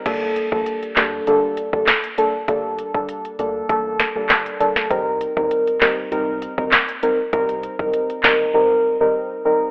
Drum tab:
CC |x---------------|----------------|----------------|----------------|
HH |x-x-xxx-x-x-xxx-|x-x-xxx-x-x-xxx-|x-x-xxx-x-x-xxx-|xxx-xxx---------|
CP |------x-----x---|------------x---|------x-----x---|------x---------|
SD |------o-----o---|----------o-o--o|------o-----o---|------o---------|
BD |o--o-------o----|o--o----o-------|o--o-------o----|o--o------------|